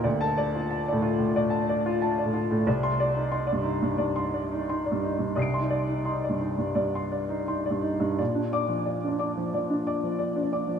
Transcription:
<<
  \new Staff \with { instrumentName = "Upright piano" } { \time 4/4 \key c \dorian \tempo 4 = 90 << { r16 a''8 r2. r16 | r16 c'''8 r2. r16 | <ees''' c'''' d''''>1 | r8 d'''16 r2. r16 | } \\ { d''8 d''16 f'16 a''16 d''16 f'16 a,16 d''16 a''16 d''16 f'16 a''16 d''16 f'16 a,16 | d''8 d''16 ees'16 c'''16 d''16 ees'16 g,16 d''16 c'''16 d''16 ees'16 c'''16 d''16 ees'16 g,16 | d''16 c'''16 d''16 ees'16 c'''16 d''16 ees'16 g,16 d''16 c'''16 d''16 ees'16 c'''16 d''16 ees'16 g,16 | d''16 d'16 d''16 f16 d''16 d'16 <d'' d'''>16 f16 d''16 d'16 <d'' d'''>16 f16 d''16 d'16 <d'' d'''>16 f16 | } >> }
  \new Staff \with { instrumentName = "Upright piano" } { \clef bass \time 4/4 \key c \dorian d,4~ \tuplet 3/2 { d,8 a,4 } a,8 r8 \tuplet 3/2 { r8 a,4 } | c,4 \tuplet 3/2 { ees'8 g,4 } g,8 r8 \tuplet 3/2 { ees'8 g,4 } | \tuplet 3/2 { c,8 ees'4 ees'8 g,4 } g,8 r8 \tuplet 3/2 { ees'8 g,4 } | bes,4~ \tuplet 3/2 { bes,8 d'4 } f8 r8 \tuplet 3/2 { r8 d'4 } | }
>>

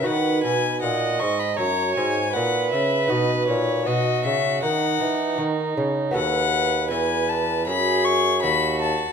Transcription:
<<
  \new Staff \with { instrumentName = "Violin" } { \time 4/4 \key b \major \tempo 4 = 79 fis''8 gis''8 fis''8 cis'''16 b''16 ais''8 gis''8 fis''8 e''8 | dis''8 cis''8 dis''8 e''8 fis''4 r4 | \key b \mixolydian fis''4 gis''8 a''8 b''8 cis'''8 b''8 a''8 | }
  \new Staff \with { instrumentName = "Violin" } { \time 4/4 \key b \major b'4 dis''4 cis''4 b'4~ | b'4 fis'4 dis'2 | \key b \mixolydian b'2 gis'4 fis'4 | }
  \new Staff \with { instrumentName = "Lute" } { \time 4/4 \key b \major <b dis' fis'>1 | <b dis' fis'>1 | \key b \mixolydian <b fis' a'>1 | }
  \new Staff \with { instrumentName = "Lute" } { \clef bass \time 4/4 \key b \major dis8 b,8 ais,8 gis,8 fis,8 gis,8 ais,8 cis8 | b,8 ais,8 b,8 cis8 dis8 e8 dis8 cis8 | \key b \mixolydian dis,4 e,4 fis,4 dis,4 | }
  \new Staff \with { instrumentName = "Bassoon" } { \clef bass \time 4/4 \key b \major dis8 b,8 ais,8 gis,8 fis,8 gis,8 ais,8 cis8 | b,8 ais,8 b,8 cis8 dis8 e8 dis8 cis8 | \key b \mixolydian dis,4 e,4 fis,4 dis,4 | }
>>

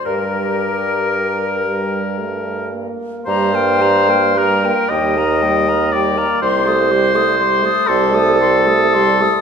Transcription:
<<
  \new Staff \with { instrumentName = "Flute" } { \time 6/8 \key g \minor \tempo 4. = 38 bes'2~ bes'8 r8 | bes''16 g''16 bes''16 g''16 bes''16 g''16 g''16 bes''16 g''16 bes''16 g''16 bes''16 | c'''16 ees'''16 c'''16 ees'''16 c'''16 ees'''16 c'''16 ees'''16 c'''16 ees'''16 c'''16 ees'''16 | }
  \new Staff \with { instrumentName = "Oboe" } { \time 6/8 \key g \minor bes'2~ bes'8 r8 | c''4 bes'8 ees''4 d''8 | c''4. a'4. | }
  \new Staff \with { instrumentName = "Clarinet" } { \time 6/8 \key g \minor g'2~ g'16 r8. | g'16 bes'16 g'16 bes'16 g'16 bes'16 g'16 bes'16 g'16 bes'16 g'16 bes'16 | g'16 a'16 g'16 a'16 g'16 a'16 g'16 a'16 g'16 a'16 g'16 a'16 | }
  \new Staff \with { instrumentName = "French horn" } { \clef bass \time 6/8 \key g \minor g4. g8 a8 bes8 | g16 bes16 g16 bes16 g16 bes16 g16 bes16 g16 bes16 g16 bes16 | g16 a16 g16 a16 g16 a16 g16 a16 g16 a16 g16 a16 | }
  \new Staff \with { instrumentName = "Bassoon" } { \clef bass \time 6/8 \key g \minor g,2~ g,8 r8 | g,4. ees,4. | c,4. c,4. | }
>>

